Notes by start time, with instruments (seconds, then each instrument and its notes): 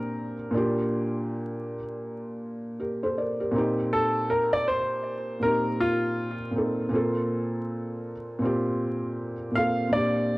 Already playing: felt piano A#2 A#3 C4 D4 G4, upright piano A#4
0.51 felt piano A#2 A#3 D4
0.56 felt piano F4 G4
2.80 felt piano G4 A#4
3.03 felt piano A4 C5
3.18 felt piano A#4 D5
3.40 felt piano G4 A#4
3.51 felt piano A#2 A#3 C4
3.56 felt piano D#4 G4
3.93 upright piano A4
4.30 upright piano A#4
4.53 upright piano D5
4.68 upright piano C5
5.40 felt piano A#2 A#3 C4, upright piano A#4
5.45 felt piano D#4 G4
5.81 upright piano F4
6.51 felt piano A#2 A#3 C4
6.57 felt piano D#4 A4
6.89 felt piano A#2 A#3 C4
6.94 felt piano F4 A4
8.39 felt piano A#2 A#3 C4
8.44 felt piano F4 G4
9.51 felt piano A#2 A#3 C4
9.56 felt piano F4 A4, upright piano F5
9.89 felt piano A#2 A#3 C4, upright piano D5
9.94 felt piano D4 G4